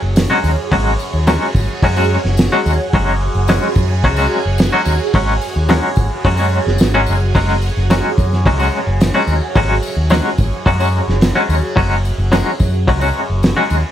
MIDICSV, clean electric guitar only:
0, 0, Header, 1, 2, 480
1, 0, Start_track
1, 0, Tempo, 552486
1, 627, Time_signature, 4, 2, 24, 8
1, 12091, End_track
2, 0, Start_track
2, 0, Title_t, "Clean electric guitar"
2, 0, Program_c, 0, 27
2, 259, Note_on_c, 0, 66, 97
2, 265, Note_on_c, 0, 56, 82
2, 266, Note_on_c, 0, 61, 87
2, 273, Note_on_c, 0, 54, 78
2, 419, Note_off_c, 0, 66, 0
2, 422, Note_off_c, 0, 56, 0
2, 423, Note_off_c, 0, 61, 0
2, 426, Note_off_c, 0, 54, 0
2, 622, Note_on_c, 0, 54, 76
2, 626, Note_on_c, 0, 56, 96
2, 629, Note_on_c, 0, 61, 79
2, 632, Note_on_c, 0, 66, 89
2, 781, Note_off_c, 0, 54, 0
2, 783, Note_off_c, 0, 56, 0
2, 785, Note_off_c, 0, 61, 0
2, 786, Note_off_c, 0, 66, 0
2, 1107, Note_on_c, 0, 54, 97
2, 1109, Note_on_c, 0, 56, 90
2, 1111, Note_on_c, 0, 61, 82
2, 1115, Note_on_c, 0, 66, 91
2, 1264, Note_off_c, 0, 54, 0
2, 1265, Note_off_c, 0, 56, 0
2, 1266, Note_off_c, 0, 61, 0
2, 1268, Note_off_c, 0, 66, 0
2, 1590, Note_on_c, 0, 54, 83
2, 1595, Note_on_c, 0, 56, 86
2, 1598, Note_on_c, 0, 61, 99
2, 1603, Note_on_c, 0, 66, 92
2, 1701, Note_off_c, 0, 66, 0
2, 1705, Note_off_c, 0, 61, 0
2, 1710, Note_off_c, 0, 54, 0
2, 1710, Note_off_c, 0, 56, 0
2, 1712, Note_on_c, 0, 66, 83
2, 1715, Note_on_c, 0, 61, 80
2, 1720, Note_on_c, 0, 56, 61
2, 1723, Note_on_c, 0, 54, 55
2, 1866, Note_off_c, 0, 66, 0
2, 1868, Note_off_c, 0, 61, 0
2, 1871, Note_off_c, 0, 56, 0
2, 1872, Note_off_c, 0, 54, 0
2, 2191, Note_on_c, 0, 66, 98
2, 2195, Note_on_c, 0, 61, 79
2, 2197, Note_on_c, 0, 56, 84
2, 2203, Note_on_c, 0, 54, 79
2, 2346, Note_off_c, 0, 66, 0
2, 2348, Note_off_c, 0, 61, 0
2, 2349, Note_off_c, 0, 56, 0
2, 2352, Note_off_c, 0, 54, 0
2, 2552, Note_on_c, 0, 54, 84
2, 2557, Note_on_c, 0, 56, 88
2, 2557, Note_on_c, 0, 61, 86
2, 2562, Note_on_c, 0, 66, 88
2, 2706, Note_off_c, 0, 54, 0
2, 2709, Note_off_c, 0, 56, 0
2, 2709, Note_off_c, 0, 61, 0
2, 2712, Note_off_c, 0, 66, 0
2, 3030, Note_on_c, 0, 54, 81
2, 3033, Note_on_c, 0, 56, 97
2, 3035, Note_on_c, 0, 61, 91
2, 3038, Note_on_c, 0, 66, 87
2, 3186, Note_off_c, 0, 54, 0
2, 3187, Note_off_c, 0, 56, 0
2, 3188, Note_off_c, 0, 61, 0
2, 3189, Note_off_c, 0, 66, 0
2, 3510, Note_on_c, 0, 54, 82
2, 3514, Note_on_c, 0, 56, 84
2, 3518, Note_on_c, 0, 61, 96
2, 3524, Note_on_c, 0, 66, 89
2, 3618, Note_off_c, 0, 66, 0
2, 3623, Note_off_c, 0, 61, 0
2, 3624, Note_off_c, 0, 56, 0
2, 3629, Note_on_c, 0, 66, 79
2, 3630, Note_off_c, 0, 54, 0
2, 3633, Note_on_c, 0, 61, 83
2, 3634, Note_on_c, 0, 56, 80
2, 3642, Note_on_c, 0, 54, 66
2, 3785, Note_off_c, 0, 66, 0
2, 3787, Note_off_c, 0, 61, 0
2, 3788, Note_off_c, 0, 56, 0
2, 3791, Note_off_c, 0, 54, 0
2, 4105, Note_on_c, 0, 66, 89
2, 4109, Note_on_c, 0, 61, 84
2, 4113, Note_on_c, 0, 56, 82
2, 4115, Note_on_c, 0, 54, 80
2, 4262, Note_off_c, 0, 66, 0
2, 4265, Note_off_c, 0, 61, 0
2, 4267, Note_off_c, 0, 56, 0
2, 4268, Note_off_c, 0, 54, 0
2, 4469, Note_on_c, 0, 54, 77
2, 4473, Note_on_c, 0, 56, 85
2, 4474, Note_on_c, 0, 61, 97
2, 4481, Note_on_c, 0, 66, 90
2, 4624, Note_off_c, 0, 54, 0
2, 4626, Note_off_c, 0, 56, 0
2, 4627, Note_off_c, 0, 61, 0
2, 4630, Note_off_c, 0, 66, 0
2, 4943, Note_on_c, 0, 54, 84
2, 4946, Note_on_c, 0, 56, 93
2, 4951, Note_on_c, 0, 61, 90
2, 4954, Note_on_c, 0, 66, 99
2, 5102, Note_off_c, 0, 54, 0
2, 5103, Note_off_c, 0, 56, 0
2, 5105, Note_off_c, 0, 61, 0
2, 5107, Note_off_c, 0, 66, 0
2, 5428, Note_on_c, 0, 54, 85
2, 5432, Note_on_c, 0, 56, 85
2, 5435, Note_on_c, 0, 61, 98
2, 5439, Note_on_c, 0, 66, 86
2, 5541, Note_off_c, 0, 66, 0
2, 5545, Note_off_c, 0, 61, 0
2, 5547, Note_off_c, 0, 56, 0
2, 5548, Note_off_c, 0, 54, 0
2, 5552, Note_on_c, 0, 66, 80
2, 5556, Note_on_c, 0, 61, 74
2, 5558, Note_on_c, 0, 56, 74
2, 5562, Note_on_c, 0, 54, 65
2, 5705, Note_off_c, 0, 66, 0
2, 5707, Note_off_c, 0, 61, 0
2, 5708, Note_off_c, 0, 56, 0
2, 5710, Note_off_c, 0, 54, 0
2, 6031, Note_on_c, 0, 66, 78
2, 6035, Note_on_c, 0, 61, 85
2, 6038, Note_on_c, 0, 54, 78
2, 6038, Note_on_c, 0, 56, 86
2, 6185, Note_off_c, 0, 66, 0
2, 6187, Note_off_c, 0, 61, 0
2, 6188, Note_off_c, 0, 54, 0
2, 6188, Note_off_c, 0, 56, 0
2, 6385, Note_on_c, 0, 54, 83
2, 6390, Note_on_c, 0, 61, 95
2, 6391, Note_on_c, 0, 56, 90
2, 6395, Note_on_c, 0, 66, 87
2, 6541, Note_off_c, 0, 54, 0
2, 6544, Note_off_c, 0, 61, 0
2, 6545, Note_off_c, 0, 56, 0
2, 6546, Note_off_c, 0, 66, 0
2, 6866, Note_on_c, 0, 54, 76
2, 6871, Note_on_c, 0, 56, 83
2, 6876, Note_on_c, 0, 61, 84
2, 6878, Note_on_c, 0, 66, 88
2, 7022, Note_off_c, 0, 54, 0
2, 7024, Note_off_c, 0, 56, 0
2, 7027, Note_off_c, 0, 61, 0
2, 7028, Note_off_c, 0, 66, 0
2, 7352, Note_on_c, 0, 54, 87
2, 7355, Note_on_c, 0, 56, 88
2, 7357, Note_on_c, 0, 61, 86
2, 7362, Note_on_c, 0, 66, 86
2, 7456, Note_off_c, 0, 66, 0
2, 7462, Note_off_c, 0, 61, 0
2, 7466, Note_off_c, 0, 56, 0
2, 7467, Note_on_c, 0, 66, 79
2, 7469, Note_off_c, 0, 54, 0
2, 7473, Note_on_c, 0, 61, 70
2, 7477, Note_on_c, 0, 56, 66
2, 7478, Note_on_c, 0, 54, 66
2, 7622, Note_off_c, 0, 66, 0
2, 7625, Note_off_c, 0, 61, 0
2, 7627, Note_off_c, 0, 54, 0
2, 7627, Note_off_c, 0, 56, 0
2, 7943, Note_on_c, 0, 66, 89
2, 7947, Note_on_c, 0, 61, 90
2, 7951, Note_on_c, 0, 56, 86
2, 7953, Note_on_c, 0, 54, 75
2, 8100, Note_off_c, 0, 66, 0
2, 8102, Note_off_c, 0, 61, 0
2, 8104, Note_off_c, 0, 56, 0
2, 8105, Note_off_c, 0, 54, 0
2, 8301, Note_on_c, 0, 54, 88
2, 8304, Note_on_c, 0, 56, 87
2, 8308, Note_on_c, 0, 61, 85
2, 8313, Note_on_c, 0, 66, 94
2, 8459, Note_off_c, 0, 54, 0
2, 8460, Note_off_c, 0, 56, 0
2, 8462, Note_off_c, 0, 61, 0
2, 8465, Note_off_c, 0, 66, 0
2, 8779, Note_on_c, 0, 54, 78
2, 8781, Note_on_c, 0, 56, 84
2, 8783, Note_on_c, 0, 61, 85
2, 8790, Note_on_c, 0, 66, 105
2, 8937, Note_off_c, 0, 54, 0
2, 8938, Note_off_c, 0, 56, 0
2, 8940, Note_off_c, 0, 61, 0
2, 8943, Note_off_c, 0, 66, 0
2, 9261, Note_on_c, 0, 54, 94
2, 9265, Note_on_c, 0, 56, 90
2, 9269, Note_on_c, 0, 61, 96
2, 9269, Note_on_c, 0, 66, 94
2, 9367, Note_off_c, 0, 66, 0
2, 9372, Note_off_c, 0, 61, 0
2, 9374, Note_off_c, 0, 56, 0
2, 9377, Note_off_c, 0, 54, 0
2, 9378, Note_on_c, 0, 66, 70
2, 9383, Note_on_c, 0, 61, 74
2, 9385, Note_on_c, 0, 56, 63
2, 9387, Note_on_c, 0, 54, 74
2, 9537, Note_off_c, 0, 66, 0
2, 9539, Note_off_c, 0, 61, 0
2, 9540, Note_off_c, 0, 56, 0
2, 9542, Note_off_c, 0, 54, 0
2, 9864, Note_on_c, 0, 66, 85
2, 9866, Note_on_c, 0, 61, 95
2, 9870, Note_on_c, 0, 56, 78
2, 9874, Note_on_c, 0, 54, 74
2, 10020, Note_off_c, 0, 61, 0
2, 10020, Note_off_c, 0, 66, 0
2, 10023, Note_off_c, 0, 56, 0
2, 10025, Note_off_c, 0, 54, 0
2, 10216, Note_on_c, 0, 54, 77
2, 10221, Note_on_c, 0, 56, 85
2, 10224, Note_on_c, 0, 61, 88
2, 10228, Note_on_c, 0, 66, 83
2, 10375, Note_off_c, 0, 54, 0
2, 10378, Note_off_c, 0, 56, 0
2, 10380, Note_off_c, 0, 61, 0
2, 10382, Note_off_c, 0, 66, 0
2, 10702, Note_on_c, 0, 54, 94
2, 10705, Note_on_c, 0, 56, 88
2, 10708, Note_on_c, 0, 61, 85
2, 10711, Note_on_c, 0, 66, 95
2, 10858, Note_off_c, 0, 54, 0
2, 10860, Note_off_c, 0, 56, 0
2, 10862, Note_off_c, 0, 61, 0
2, 10863, Note_off_c, 0, 66, 0
2, 11186, Note_on_c, 0, 54, 87
2, 11191, Note_on_c, 0, 56, 98
2, 11192, Note_on_c, 0, 61, 90
2, 11195, Note_on_c, 0, 66, 97
2, 11299, Note_off_c, 0, 66, 0
2, 11303, Note_off_c, 0, 61, 0
2, 11304, Note_off_c, 0, 54, 0
2, 11307, Note_off_c, 0, 56, 0
2, 11310, Note_on_c, 0, 66, 88
2, 11314, Note_on_c, 0, 61, 74
2, 11318, Note_on_c, 0, 56, 68
2, 11320, Note_on_c, 0, 54, 63
2, 11462, Note_off_c, 0, 66, 0
2, 11465, Note_off_c, 0, 61, 0
2, 11466, Note_off_c, 0, 56, 0
2, 11467, Note_off_c, 0, 54, 0
2, 11786, Note_on_c, 0, 66, 91
2, 11792, Note_on_c, 0, 61, 81
2, 11793, Note_on_c, 0, 56, 80
2, 11797, Note_on_c, 0, 54, 72
2, 11940, Note_off_c, 0, 66, 0
2, 11943, Note_off_c, 0, 61, 0
2, 11944, Note_off_c, 0, 56, 0
2, 11946, Note_off_c, 0, 54, 0
2, 12091, End_track
0, 0, End_of_file